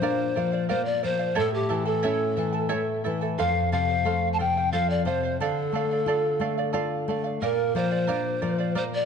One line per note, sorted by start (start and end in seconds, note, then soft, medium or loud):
0.00 1.32 A#2 medium
0.00 0.34 D4 medium
0.00 0.34 A#4 medium
0.00 0.67 C5 medium
0.00 0.35 D5 medium
0.00 0.36 F5 medium
0.36 0.68 F3 soft
0.36 0.52 A#4 soft
0.36 0.52 D5 soft
0.36 0.51 F5 medium
0.52 0.68 D5 soft
0.52 0.68 F5 soft
0.69 1.02 A#3 medium
0.69 1.02 A#4 medium
0.69 0.86 C5 medium
0.69 1.02 D5 medium
0.69 1.02 F5 medium
0.85 1.02 D5 medium
1.03 1.36 F3 medium
1.03 1.19 A#4 soft
1.03 1.40 C5 medium
1.03 1.19 D5 soft
1.03 1.18 F5 medium
1.19 1.35 D5 soft
1.19 1.35 F5 soft
1.35 3.35 A2 medium
1.35 1.68 E4 medium
1.35 1.69 A4 medium
1.35 1.54 A4 medium
1.35 1.69 C#5 medium
1.35 1.68 E5 medium
1.35 1.69 A5 medium
1.54 1.88 G4 medium
1.69 2.03 E3 soft
1.69 1.86 E4 medium
1.69 1.85 A4 medium
1.69 1.86 E5 medium
1.69 1.84 A5 medium
1.85 2.02 E4 soft
1.85 3.04 A4 medium
1.85 2.02 A4 soft
1.85 2.03 A5 soft
2.03 2.37 C#4 soft
2.03 2.36 E4 medium
2.03 2.37 A4 medium
2.03 2.37 C#5 medium
2.03 2.35 E5 medium
2.03 2.37 A5 medium
2.37 2.70 E3 soft
2.37 2.53 E4 soft
2.37 2.53 A4 soft
2.37 2.54 E5 soft
2.37 2.51 A5 medium
2.53 2.68 E4 soft
2.53 2.68 A4 soft
2.53 2.68 A5 soft
2.69 3.04 A3 soft
2.69 3.04 E4 medium
2.69 3.03 A4 medium
2.69 3.04 C#5 medium
2.69 3.03 E5 medium
2.69 3.04 A5 medium
3.04 3.38 E3 soft
3.04 3.21 E4 medium
3.04 3.21 A4 medium
3.04 3.21 E5 soft
3.04 3.20 A5 medium
3.21 3.39 E4 soft
3.21 3.37 A4 soft
3.21 3.38 A5 soft
3.38 5.36 F2 medium
3.38 3.71 A4 medium
3.38 3.72 C5 medium
3.38 3.70 F5 medium
3.38 3.72 F5 medium
3.72 4.05 C3 soft
3.72 3.89 A4 medium
3.72 3.88 C5 medium
3.72 4.28 F5 medium
3.72 3.88 F5 medium
3.89 4.05 C5 soft
3.89 4.05 F5 soft
4.05 4.38 A3 soft
4.05 4.38 A4 medium
4.05 4.38 C5 medium
4.05 4.39 F5 medium
4.33 4.41 A5 medium
4.39 4.72 C3 soft
4.39 4.56 A4 medium
4.39 4.56 C5 medium
4.39 4.56 F5 medium
4.39 4.73 G5 medium
4.57 4.72 C5 soft
4.57 4.72 F5 soft
4.72 5.06 F3 soft
4.72 5.04 A4 medium
4.72 5.06 C5 medium
4.72 4.91 F5 medium
4.72 5.06 F5 medium
4.90 5.05 D5 medium
5.05 5.38 C3 soft
5.05 5.23 A4 soft
5.05 5.37 C5 medium
5.05 5.23 C5 soft
5.05 5.22 F5 medium
5.23 5.41 C5 soft
5.23 5.40 F5 soft
5.40 7.38 D3 medium
5.40 6.71 A4 medium
5.40 5.72 A4 medium
5.40 5.74 D5 medium
5.40 5.74 F5 medium
5.72 6.06 A3 soft
5.72 5.90 A4 medium
5.72 5.91 D5 medium
5.72 5.90 F5 medium
5.91 6.07 D5 soft
5.91 6.08 F5 soft
6.06 6.39 F4 soft
6.06 6.39 A4 medium
6.06 6.40 D5 medium
6.06 6.40 F5 medium
6.40 6.73 A3 soft
6.40 6.58 A4 medium
6.40 6.58 D5 medium
6.40 6.56 F5 medium
6.58 6.72 D5 soft
6.58 6.73 F5 medium
6.73 7.07 F4 soft
6.73 7.07 A4 medium
6.73 7.08 D5 medium
6.73 7.08 F5 medium
7.08 7.41 A3 soft
7.08 7.25 A4 medium
7.08 7.25 D5 medium
7.08 7.23 F5 medium
7.24 7.42 D5 soft
7.24 7.41 F5 soft
7.42 9.05 A#2 medium
7.42 7.77 A#4 medium
7.42 7.74 A#4 medium
7.42 7.75 D5 medium
7.42 7.75 F5 medium
7.75 8.08 F3 soft
7.75 7.91 A#4 medium
7.75 8.76 C5 medium
7.75 7.91 D5 medium
7.75 7.90 F5 medium
7.91 8.07 D5 soft
7.91 8.08 F5 soft
8.07 8.41 D4 medium
8.07 8.41 A#4 medium
8.07 8.40 D5 medium
8.07 8.42 F5 medium
8.42 8.75 F3 soft
8.42 8.59 A#4 soft
8.42 8.58 D5 soft
8.42 8.57 F5 medium
8.58 8.74 D5 soft
8.58 8.75 F5 medium
8.75 9.05 A#3 soft
8.75 9.05 A#4 medium
8.75 8.83 C5 medium
8.75 9.05 D5 medium
8.75 9.05 F5 medium
8.94 9.05 D5 medium